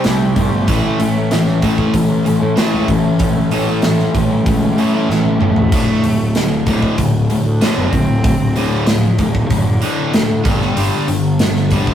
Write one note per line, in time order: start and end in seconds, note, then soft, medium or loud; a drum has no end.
0.04 0.31 C2 loud
0.04 0.66 C3 medium
0.04 0.33 C3 medium
0.04 0.66 G3 medium
0.04 0.33 G3 medium
0.04 0.26 A3 medium
0.04 0.34 C4 medium
0.04 0.36 E4 medium
0.04 0.37 G4 loud
0.04 0.38 C5 medium
0.04 snare loud
0.04 open hi-hat medium
0.28 0.52 G3 loud
0.36 0.68 G1 medium
0.36 0.65 C3 medium
0.36 0.65 G3 medium
0.36 0.65 C4 medium
0.36 0.69 E4 medium
0.36 0.67 G4 medium
0.36 0.67 C5 medium
0.36 kick medium
0.36 open hi-hat medium
0.51 1.71 A3 loud
0.67 0.80 A1 loud
0.67 1.29 A2 medium
0.67 0.97 A2 medium
0.67 1.30 E3 loud
0.67 0.98 E3 medium
0.67 0.86 A3 medium
0.67 0.98 A3 medium
0.67 0.85 C#4 medium
0.67 0.84 E4 loud
0.67 0.82 A4 loud
0.67 kick loud
0.67 open hi-hat medium
0.83 0.98 A3 medium
0.83 1.00 C#4 medium
0.83 1.01 E4 medium
0.83 1.02 A4 medium
0.99 1.76 A1 medium
0.99 1.28 A2 medium
0.99 1.28 E3 medium
0.99 1.17 A3 medium
0.99 1.16 C#4 medium
0.99 1.15 E4 medium
0.99 1.14 A4 medium
0.99 open hi-hat medium
1.15 1.31 A3 medium
1.15 1.31 C#4 medium
1.15 1.32 E4 medium
1.15 1.33 A4 medium
1.30 2.56 A2 medium
1.30 1.59 A2 medium
1.30 2.57 E3 loud
1.30 1.60 E3 medium
1.30 1.61 A3 medium
1.30 1.63 C#4 loud
1.30 1.64 E4 loud
1.30 1.65 A4 loud
1.30 snare loud
1.30 open hi-hat medium
1.48 snare soft
1.62 1.92 A2 medium
1.62 1.92 E3 loud
1.62 1.80 A3 medium
1.62 1.93 A3 loud
1.62 1.79 C#4 medium
1.62 1.77 E4 medium
1.62 1.77 A4 medium
1.62 kick medium
1.62 open hi-hat medium
1.78 2.12 A3 medium
1.78 2.10 C#4 medium
1.78 2.09 E4 medium
1.78 2.08 A4 medium
1.78 kick medium
1.94 2.32 A1 medium
1.94 2.23 A2 medium
1.94 2.23 E3 medium
1.94 kick medium
1.94 open hi-hat medium
2.09 2.24 A3 medium
2.09 2.25 C#4 medium
2.09 2.26 E4 medium
2.09 2.28 A4 medium
2.25 2.54 A2 medium
2.25 2.54 E3 medium
2.25 2.43 A3 medium
2.25 2.41 C#4 medium
2.25 2.40 E4 medium
2.25 2.39 A4 medium
2.25 open hi-hat medium
2.40 2.54 A2 medium
2.40 2.57 A3 medium
2.40 2.57 C#4 medium
2.40 2.58 E4 medium
2.40 2.59 A4 medium
2.56 3.18 A2 medium
2.56 2.87 A2 medium
2.56 3.19 E3 medium
2.56 2.87 E3 medium
2.56 2.88 A3 loud
2.56 2.87 A3 loud
2.56 2.88 C#4 medium
2.56 2.89 E4 loud
2.56 2.91 A4 loud
2.56 snare loud
2.56 open hi-hat medium
2.74 2.86 C#2 medium
2.88 3.26 A1 medium
2.88 3.17 A2 medium
2.88 3.17 E3 medium
2.88 3.20 A3 medium
2.88 3.21 C#4 medium
2.88 3.21 E4 medium
2.88 3.22 A4 medium
2.88 kick medium
2.88 open hi-hat medium
3.19 3.67 A2 medium
3.19 3.48 A2 medium
3.19 3.49 E3 medium
3.19 3.67 E3 medium
3.19 3.37 A3 medium
3.19 3.35 C#4 medium
3.19 3.34 E4 medium
3.19 3.33 A4 loud
3.19 kick loud
3.19 open hi-hat medium
3.34 4.00 A1 medium
3.34 3.48 A3 medium
3.34 3.49 C#4 medium
3.34 3.51 E4 medium
3.34 3.52 A4 medium
3.49 3.81 A2 medium
3.49 3.81 E3 loud
3.49 3.68 A3 medium
3.49 3.81 A3 medium
3.49 3.67 C#4 medium
3.49 3.66 E4 medium
3.49 3.64 A4 medium
3.49 open hi-hat medium
3.66 3.81 A3 medium
3.66 3.82 C#4 medium
3.66 3.83 E4 medium
3.66 3.83 A4 medium
3.81 4.45 A2 loud
3.81 4.12 A2 medium
3.81 4.45 E3 loud
3.81 4.12 E3 medium
3.81 4.11 A3 loud
3.81 4.12 C#4 medium
3.81 4.13 E4 loud
3.81 4.15 A4 loud
3.81 snare loud
3.81 open hi-hat medium
3.99 snare soft
4.12 4.40 A1 medium
4.12 4.43 A2 medium
4.12 4.43 E3 medium
4.12 4.31 A3 medium
4.12 4.30 C#4 medium
4.12 4.29 E4 medium
4.12 4.27 A4 medium
4.12 kick medium
4.12 open hi-hat medium
4.27 4.49 G3 loud
4.27 4.62 C#4 medium
4.27 4.60 E4 medium
4.27 4.59 A4 medium
4.32 4.63 A3 medium
4.46 4.72 C#2 medium
4.46 4.74 A2 medium
4.46 4.75 E3 medium
4.46 4.67 A3 medium
4.46 kick loud
4.46 open hi-hat medium
4.60 4.76 C#4 medium
4.60 4.77 E4 medium
4.60 4.78 A4 medium
4.64 4.75 A3 medium
4.69 4.88 G3 medium
4.76 5.07 A2 medium
4.76 5.07 E3 medium
4.76 4.94 A3 medium
4.76 5.07 A3 loud
4.76 4.94 C#4 medium
4.76 4.92 E4 medium
4.76 4.91 A4 medium
4.76 open hi-hat medium
4.89 5.11 G3 medium
4.89 5.10 A4 medium
4.93 5.08 A3 medium
4.93 5.09 C#4 medium
4.93 5.10 E4 medium
5.08 5.35 A1 medium
5.08 5.70 A2 medium
5.08 5.37 A2 medium
5.08 5.70 E3 medium
5.08 5.38 E3 medium
5.08 5.38 A3 loud
5.08 5.32 A3 medium
5.08 5.40 C#4 medium
5.08 5.41 E4 medium
5.08 5.41 A4 medium
5.08 snare medium
5.25 high tom medium
5.31 5.53 G3 loud
5.39 5.72 E1 medium
5.39 5.69 A2 medium
5.39 5.69 E3 medium
5.39 5.70 A3 medium
5.39 5.70 C#4 medium
5.39 5.71 E4 medium
5.39 5.71 A4 medium
5.39 mid tom medium
5.52 6.74 A3 loud
5.56 floor tom medium
5.72 5.85 D1 loud
5.72 6.02 D2 medium
5.72 6.02 A2 medium
5.72 6.02 D3 medium
5.72 kick loud
5.72 open hi-hat medium
5.72 splash medium
6.04 6.81 D1 medium
6.04 6.32 D2 medium
6.04 6.32 A2 medium
6.04 open hi-hat medium
6.35 6.64 D2 medium
6.35 6.64 A2 medium
6.35 snare loud
6.35 open hi-hat medium
6.67 6.97 D2 medium
6.67 6.97 A2 loud
6.67 6.97 D3 loud
6.67 kick medium
6.67 open hi-hat medium
6.82 kick medium
6.98 7.37 D1 medium
6.98 7.27 D2 medium
6.98 7.27 A2 medium
6.98 kick loud
6.98 open hi-hat medium
7.30 7.59 D2 medium
7.30 7.59 A2 medium
7.30 open hi-hat medium
7.45 7.58 D2 medium
7.61 7.91 D2 medium
7.61 7.91 A2 loud
7.61 7.92 D3 medium
7.61 7.77 A3 medium
7.61 snare loud
7.61 open hi-hat medium
7.77 7.90 F#1 medium
7.77 8.70 C4 medium
7.92 8.31 D1 medium
7.92 8.22 D2 medium
7.92 8.22 A2 medium
7.92 kick medium
7.92 open hi-hat medium
8.24 8.53 D2 medium
8.24 8.53 A2 medium
8.24 kick loud
8.24 open hi-hat medium
8.40 9.04 D1 medium
8.56 8.86 D2 medium
8.56 8.86 A2 medium
8.56 8.86 D3 loud
8.56 open hi-hat medium
8.74 8.88 A3 medium
8.87 9.16 D2 medium
8.87 9.16 A2 medium
8.87 9.22 F3 loud
8.87 snare loud
8.87 open hi-hat medium
9.18 9.44 D1 medium
9.18 9.48 D2 medium
9.18 9.48 A2 medium
9.18 9.51 D3 medium
9.18 kick medium
9.18 open hi-hat medium
9.35 kick medium
9.50 9.76 F#1 loud
9.50 9.80 D2 medium
9.50 9.80 A2 loud
9.50 10.13 D3 loud
9.50 kick loud
9.50 open hi-hat medium
9.82 10.13 D2 medium
9.82 10.13 A2 loud
9.82 10.13 D3 loud
9.82 open hi-hat medium
10.14 10.40 D2 loud
10.14 10.43 D2 medium
10.14 10.43 A2 medium
10.14 snare loud
10.14 open hi-hat medium
10.45 10.71 G1 medium
10.45 10.75 G2 loud
10.45 10.76 D3 loud
10.45 10.76 G3 loud
10.45 kick loud
10.45 open hi-hat medium
10.61 snare soft
10.77 10.90 G1 loud
10.77 11.07 G2 medium
10.77 11.07 D3 medium
10.77 11.07 G3 loud
10.77 open hi-hat medium
11.08 11.85 G1 medium
11.08 11.37 G2 medium
11.08 11.37 D3 medium
11.08 open hi-hat medium
11.39 11.69 G2 medium
11.39 11.69 D3 medium
11.39 snare loud
11.39 open hi-hat medium
11.56 snare soft
11.71 11.94 G2 medium
11.71 11.94 D3 loud
11.71 11.94 G3 loud
11.71 kick medium
11.71 open hi-hat medium
11.87 kick medium